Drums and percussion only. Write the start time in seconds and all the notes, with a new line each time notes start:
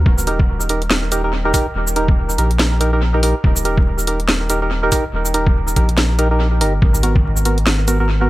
0.06 kick
0.18 shaker
0.27 closed hi-hat
0.39 kick
0.61 shaker
0.69 closed hi-hat
0.82 closed hi-hat
0.91 snare
1.12 closed hi-hat, shaker
1.54 kick, open hi-hat, shaker
1.87 shaker
1.96 closed hi-hat
2.08 kick
2.30 shaker
2.38 closed hi-hat
2.51 closed hi-hat
2.59 snare
2.81 closed hi-hat
3.23 open hi-hat
3.44 kick
3.56 shaker
3.65 closed hi-hat
3.78 kick
3.99 shaker
4.07 closed hi-hat
4.20 closed hi-hat
4.29 snare
4.50 closed hi-hat, shaker
4.92 kick, open hi-hat, shaker
5.25 shaker
5.34 closed hi-hat
5.47 kick
5.68 shaker
5.76 kick, closed hi-hat
5.89 closed hi-hat
5.98 snare
6.19 closed hi-hat
6.61 open hi-hat
6.82 kick
6.94 shaker
7.03 closed hi-hat
7.16 kick
7.37 shaker
7.45 closed hi-hat
7.58 closed hi-hat
7.67 snare
7.88 closed hi-hat, shaker